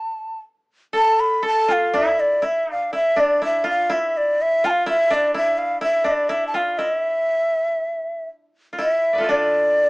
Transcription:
0.00 0.37 A4 medium
0.00 0.39 A5 loud
0.93 1.42 A4 medium
0.93 1.21 A5 medium
1.20 1.44 B5 medium
1.43 3.33 A4 medium
1.43 1.73 A5 medium
1.68 2.00 F4 medium
1.68 1.99 F5 medium
1.94 2.42 E4 medium
1.98 2.21 E5 medium
2.20 2.46 D5 medium
2.42 2.71 E4 medium
2.42 2.68 E5 medium
2.71 2.92 D4 medium
2.71 2.92 F5 medium
2.93 3.41 E4 medium
2.93 3.22 E5 medium
3.16 5.10 D4 medium
3.16 3.42 D5 medium
3.42 3.70 E4 medium
3.42 3.65 E5 medium
3.64 3.96 F4 medium
3.69 3.95 F5 medium
3.90 4.70 E4 medium
3.90 4.19 E5 medium
4.17 4.43 D5 medium
4.42 4.67 E5 medium
4.64 4.92 F4 medium
4.64 4.71 A5 medium
4.70 4.87 F5 medium
4.86 5.34 E4 medium
4.86 5.15 E5 medium
5.10 6.04 D4 medium
5.10 5.35 D5 medium
5.34 5.81 E4 medium
5.34 5.59 E5 medium
5.58 5.81 F5 medium
5.81 6.29 E4 medium
5.81 6.08 E5 medium
6.04 8.47 D4 medium
6.04 6.31 D5 medium
6.29 6.60 E4 medium
6.29 6.47 E5 medium
6.48 6.57 A5 medium
6.54 6.85 F4 medium
6.54 6.79 F5 medium
6.78 8.78 E4 medium
6.78 6.95 D#5 medium
6.95 8.28 E5 medium
8.73 8.84 F4 soft
8.78 9.23 E4 medium
8.78 9.31 E5 medium
9.13 9.89 B4 soft
9.13 9.89 D5 soft
9.18 9.89 F4 soft
9.18 9.89 A4 soft
9.24 9.89 E4 soft
9.29 9.89 D4 medium
9.29 9.89 D5 medium

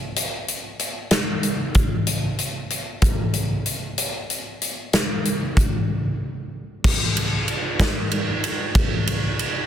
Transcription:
0.16 closed hi-hat medium
0.48 closed hi-hat medium
0.79 closed hi-hat medium
1.11 snare loud
1.11 closed hi-hat loud
1.43 closed hi-hat medium
1.74 kick medium
1.74 closed hi-hat medium
2.07 closed hi-hat medium
2.38 closed hi-hat medium
2.70 closed hi-hat medium
3.02 kick loud
3.02 closed hi-hat medium
3.33 closed hi-hat medium
3.66 closed hi-hat medium
3.98 closed hi-hat medium
4.30 closed hi-hat medium
4.61 closed hi-hat medium
4.93 snare loud
4.93 closed hi-hat medium
5.25 closed hi-hat medium
5.57 kick medium
5.57 closed hi-hat medium
6.84 kick loud
6.84 crash loud
7.17 ride medium
7.48 ride medium
7.80 kick medium
7.80 snare loud
7.80 ride loud
8.11 ride medium
8.44 ride medium
8.75 kick loud
8.75 ride loud
9.07 ride medium
9.39 ride medium

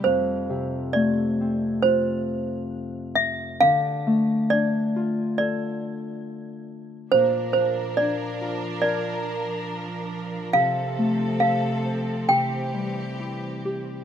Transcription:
0.00 0.95 A3 medium
0.00 1.40 C4 medium
0.00 0.90 C5 medium
0.06 3.68 F2 medium
0.50 3.68 C3 soft
0.93 4.06 A3 medium
0.93 1.86 D5 medium
1.41 4.41 C4 soft
1.82 4.37 F4 medium
1.82 3.21 C5 medium
3.15 3.58 E5 medium
3.61 7.18 D3 medium
3.61 4.53 F5 loud
4.07 7.20 A3 medium
4.50 7.31 D4 soft
4.50 5.37 D5 medium
4.96 7.48 F4 medium
5.38 7.20 A4 medium
5.38 6.65 D5 medium
7.12 10.60 A#2 medium
7.12 12.25 F3 medium
7.12 10.51 D4 medium
7.12 10.51 A#4 medium
7.12 7.31 C5 medium
7.53 10.60 F3 medium
7.53 7.99 C5 medium
7.97 10.79 D4 medium
7.97 8.80 D5 medium
8.41 10.94 F4 medium
8.82 10.96 A#4 medium
8.82 10.59 D5 medium
10.53 12.28 C3 medium
10.53 14.04 C4 medium
10.53 12.28 A4 medium
10.53 11.37 F5 loud
10.98 14.04 A3 soft
11.40 13.62 A4 medium
11.40 12.25 F5 medium
11.86 13.84 C5 medium
12.29 14.04 C3 medium
12.29 14.04 E3 medium
12.29 14.04 G4 medium
12.29 13.61 G5 medium
12.74 14.04 G3 soft
13.20 14.04 E4 soft
13.65 14.04 G4 medium

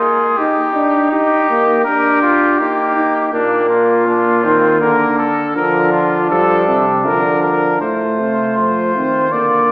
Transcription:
0.00 0.36 A#3 medium
0.00 0.38 F4 medium
0.00 0.39 G#4 medium
0.37 0.74 D#4 medium
0.37 1.83 D#4 medium
0.37 1.11 G4 medium
0.75 1.11 D4 medium
1.12 1.48 D#4 medium
1.12 1.84 G4 medium
1.50 1.85 A#3 medium
1.85 2.62 D4 medium
1.85 2.59 G4 medium
1.85 2.21 A#4 medium
2.22 2.60 F4 medium
2.59 3.32 A#3 medium
2.59 2.95 D#4 medium
2.59 3.32 G4 medium
2.96 3.32 D#4 medium
3.32 4.40 A#2 medium
3.32 4.08 A#3 medium
3.32 4.06 A#3 medium
3.32 3.69 D4 medium
3.70 4.79 F4 medium
4.06 5.26 A#3 medium
4.06 4.45 D4 medium
4.43 4.82 D#3 medium
4.43 4.82 C4 medium
4.81 5.55 D3 medium
4.81 5.30 A#3 medium
4.81 5.18 A#4 medium
5.18 5.55 A4 medium
5.55 6.29 D3 medium
5.55 6.27 F3 medium
5.55 7.78 D4 medium
5.55 5.92 A#4 medium
5.92 6.29 F4 medium
6.30 6.67 F3 medium
6.30 7.06 G3 medium
6.30 6.78 A4 medium
6.68 7.07 C3 medium
7.05 7.81 D3 medium
7.05 7.81 F3 medium
7.05 7.41 A#4 medium
7.43 7.80 A#4 medium
7.81 8.21 A2 medium
7.81 8.91 A3 medium
7.81 9.72 F4 medium
7.81 8.53 C5 medium
8.19 8.56 C3 medium
8.57 8.94 F3 medium
8.57 9.33 C5 medium
8.95 9.31 D#3 medium
8.95 9.31 C4 medium
9.31 9.68 D3 medium
9.31 9.72 A#3 medium
9.31 9.72 D5 medium
9.69 9.72 C3 medium

